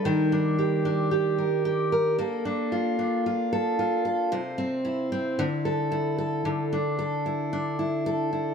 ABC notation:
X:1
M:4/4
L:1/8
Q:1/4=112
K:Dmix
V:1 name="Steel-string acoustic guitar"
[_E,_B] D G D G B G B | [_B,A] D =F D F A F A | [C,c] C E C D, A E A | D, D A E D E A E |]